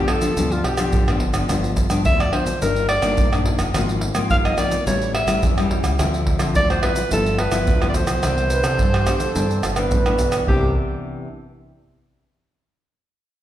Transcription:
Already playing: D3 F3 B3 D4
0.08 A4, pandeiro, tamborim
0.21 F3 B3 D4, pandeiro, shaker
0.36 D2 G2 F3 B3 D4, pandeiro, shaker, surdo
0.52 F4, pandeiro, shaker
0.64 B1 G4, pandeiro, tamborim
0.77 F3 B3 D4, pandeiro, tamborim, shaker
0.93 A1 D3, pandeiro, shaker, surdo
1.08 F3 B3 D4, pandeiro, tamborim, shaker
1.20 G1, pandeiro
1.34 F3 B3 D4, pandeiro, tamborim, shaker
1.49 G1 G2 F3 B3 D4, pandeiro, tamborim, shaker, surdo
1.64 pandeiro, shaker
1.77 pandeiro, shaker, surdo
1.90 G2 F3 B3 D4, pandeiro, tamborim, shaker
2.05 D2 D3 E5, pandeiro, shaker, surdo
2.20 D5, pandeiro, tamborim, shaker
2.33 F3 B3 D4 C5, pandeiro, tamborim
2.46 pandeiro, shaker
2.61 G1 G2 D#3 A#3 D4 A#4, pandeiro, shaker, surdo
2.76 pandeiro, shaker
2.89 D5, pandeiro, tamborim
3.02 G1 D#3 A#3 D4, pandeiro, tamborim, shaker
3.17 A#1 G2, pandeiro, shaker, surdo
3.33 D#3 A#3 D4, pandeiro, tamborim, shaker
3.45 pandeiro
3.58 F1, pandeiro, tamborim, shaker
3.74 G#1 G#2 F3 A#3 C4, pandeiro, tamborim, shaker, surdo
3.89 pandeiro, shaker
4.01 pandeiro
4.15 G#2 F3 A#3 C4, pandeiro, tamborim, shaker
4.30 G1 D#3 F5, pandeiro, shaker, surdo
4.45 D#5, pandeiro, tamborim, shaker
4.57 F3 A#3 C4 D5, pandeiro, tamborim, shaker
4.71 pandeiro, shaker
4.86 A1 A2 G3 C#4 E4 C#5, pandeiro, shaker, surdo
5.02 pandeiro, shaker
5.15 E5, pandeiro, tamborim
5.27 A1 G3 C#4 E4, pandeiro, tamborim, shaker
5.43 E2 E3, pandeiro, shaker, surdo
5.57 G3 C#4 E4, pandeiro, tamborim, shaker
5.71 pandeiro
5.83 C#2, pandeiro, tamborim, shaker
5.99 D2 D3 F3 C4 E4, pandeiro, tamborim, shaker, surdo
6.14 pandeiro, shaker
6.27 pandeiro, surdo
6.39 D3 F3 C4 E4, pandeiro, tamborim, shaker
6.55 D2 A2 D5, pandeiro, shaker, surdo
6.70 C5, pandeiro, tamborim, shaker
6.83 F3 C4 E4 B4, pandeiro, tamborim
6.96 pandeiro, shaker
7.11 G1 G2 F3 B3 E4 A4, pandeiro, shaker, surdo
7.26 pandeiro, shaker
7.38 B4, pandeiro, tamborim
7.52 G1 F3 B3 E4, pandeiro, tamborim, shaker
7.67 D2 D3, pandeiro, shaker, surdo
7.81 F3 B3 E4, pandeiro, tamborim, shaker
7.89 D5
7.94 C5, pandeiro, shaker
8.07 B1, pandeiro, tamborim, shaker
8.23 C2 C3 E3 B3 D4, pandeiro, tamborim, shaker, surdo
8.38 pandeiro, shaker
8.50 B4, pandeiro, shaker
8.64 C3 E3 D4 A4, pandeiro, tamborim, shaker
8.79 G2, pandeiro, shaker, surdo
8.93 G4, pandeiro, tamborim, shaker
9.07 E3 B3 D4, pandeiro, tamborim, shaker
9.19 A4, pandeiro, shaker
9.36 G2 C3 E3 D4, pandeiro, shaker, surdo
9.51 pandeiro, shaker
9.63 G1, pandeiro, tamborim, shaker
9.76 E3 B3 D4 B4, pandeiro, tamborim, shaker
9.91 A1 G2, pandeiro, shaker, surdo
10.06 E3 B3 D4, pandeiro, tamborim, shaker
10.19 B1, pandeiro, shaker
10.32 pandeiro, tamborim, shaker
10.47 C2 C3 E3 B3 D4 G4, surdo

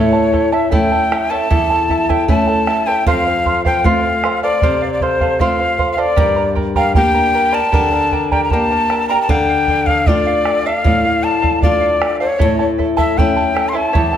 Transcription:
Already playing: A2 E4 A4 C#5 E5 A5
0.13 E4 A4 A5
0.32 E4 A4 E5 A5, bombo low
0.53 E4 A4 C#5 E5 A5
0.71 A3 C#4 E4 A4 E5 G5 A5, bombo low
0.92 E4 A4 A5
1.12 E4 A4 E5 A5, bombo rim
1.30 E4 A4 C#5 E5 A5
1.50 E2 E4 A4 C#5 E5 A5, bombo low
1.70 E4 A4 A5
1.90 E4 A4 E5 A5, bombo low
2.09 E4 A4 C#5 E5 G5 A5, bombo low
2.28 A3 C#4 E4 A4 E5 A5, bombo low
2.48 E4 A4 A5
2.67 E4 A4 E5 A5, bombo rim
2.87 E4 A4 C#5 E5 G5 A5
3.06 F2 A4 C5 F5, bombo low
3.26 C5 F5
3.45 A4 C5 F5, bombo low
3.65 A4 C5 F5 G5, bombo low
3.84 A3 C4 F4 A4 C5 F5, bombo low
4.03 C5 F5
4.24 A4 C5 F5, bombo rim
4.43 A4 C5 D5 F5
4.62 C3 A4 C5 F5, bombo low
4.82 C5 F5
4.93 D5
5.00 A4 C5 F5, bombo low
5.21 A4 C5 F5, bombo low
5.40 A3 C4 F4 A4 C5 F5, bombo low
5.59 C5 F5
5.78 A4 C5 F5, bombo low
5.92 F5
5.97 A4 C5 D5 F5
6.16 G2 G4 A#4 D5 G5 A#5, bombo low
6.36 A#4 D5 A#5
6.55 A#4 D5 G5 A#5, bombo low
6.75 G4 A#4 D5 F5 G5 A#5, bombo low
6.95 A#3 D4 G4 A#4 D5 G5 A#5, bombo low
7.15 A#4 D5 A#5
7.33 A#4 D5 G5 A#5
7.52 G4 A#4 D5 G5 A5 A#5
7.72 D3 G4 A#4 D5 G5 A#5, bombo low
7.92 A#4 D5 A#5
8.12 A#4 D5 G5 A#5, bombo low
8.32 G4 A#4 D5 G5 A#5, bombo low
8.44 A#5
8.51 A#3 D4 G4 A#4 D5 G5 A5 A#5, bombo low
8.70 A#4 D5 A#5
8.89 A#4 D5 G5 A#5, bombo rim
9.09 G4 A#4 D5 G5 A#5
9.22 A5
9.29 D3 A4 D5 F5 G5, bombo low
9.49 D5 F5
9.67 A4 D5 F5, bombo low
9.86 A4 D5 F5, bombo low
10.07 A3 D4 F4 A4 D5 F5, bombo low
10.27 D5 F5
10.45 A4 D5 F5, bombo rim
10.66 A4 D5 F5
10.84 A2 A4 D5 F5, bombo low
11.05 D5 F5
11.23 A4 D5 F5 A5
11.42 A4 D5 F5, bombo low
11.61 A3 D4 F4 A4 D5 F5, bombo low
11.81 D5 F5
12.01 A4 D5 F5, bombo rim
12.20 A4 C#5 D5 F5
12.38 A2 E4 A4 C#5 E5 A5, bombo low
12.59 E4 A4 A5
12.78 E4 A4 E5 A5, bombo low
12.97 E4 A4 C#5 E5 A5, bombo low
13.17 A3 C#4 E4 A4 E5 G5 A5, bombo low
13.37 E4 A4 A5
13.55 E4 A4 E5 A5, bombo rim
13.69 C6
13.73 E4 A4 C#5 E5 A5
13.93 E2 E4 A4 C#5 E5 A5, bombo low
14.13 E4 A4 A5

